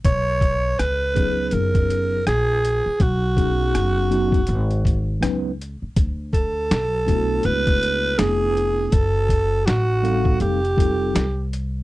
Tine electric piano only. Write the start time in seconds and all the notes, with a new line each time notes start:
1.15 F#3 B3 C#4 D#4 G#4
3.36 F#3 B3 C#4 D#4 G#4
4.10 F#3 B3 C#4 D#4 F#4
5.21 F#3 B3 C#4 D#4 B4
7.06 A3 B3 D4 E4 F#4
8.18 A3 B3 D4 E4 G#4
10.03 G3 C4 D#4 A4 F5
10.77 G3 C4 D#4 F4 A4